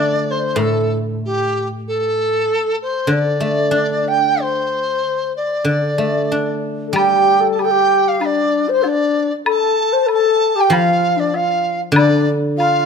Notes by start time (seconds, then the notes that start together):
Already playing: D3 A3 D4 D5
0.30 C5
0.56 A2
0.62 A4
1.25 G4
1.87 A4
2.82 C5
3.07 D3
3.11 D5
3.40 A3
3.71 D4
4.08 G5
4.41 C5
5.36 D5
5.65 D3 D5
5.98 A3
6.32 D4
6.86 A4
6.93 G3 G4 G5, high woodblock
7.40 A4
7.52 A5
7.59 G4 G5, high woodblock
7.65 A4
7.71 G4
8.08 F5
8.20 D4, high woodblock
8.25 D5
8.68 C5
8.73 C5
8.84 D4 D5, low woodblock
9.45 A4, high woodblock
9.51 A5
9.92 C5
10.06 A4, high woodblock
10.13 A5
10.55 G4
10.60 G5
10.70 F3 F4 F5, high woodblock
11.16 D4 D5
11.34 F4 F5, low woodblock
11.92 D3 D4
11.96 D5, high woodblock
12.56 F4 F5, high woodblock